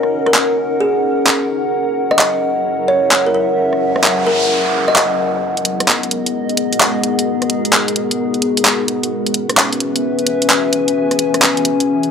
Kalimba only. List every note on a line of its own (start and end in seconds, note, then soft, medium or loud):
0.27 0.34 A#4 medium
0.81 1.19 G#4 medium
2.11 2.16 D#5 medium
2.19 2.29 D#5 medium
2.88 3.03 C#5 medium
3.27 3.32 A#4 medium
3.34 3.44 A#4 medium
4.27 4.42 A#4 medium
4.88 4.93 D#5 medium
4.96 5.06 D#5 medium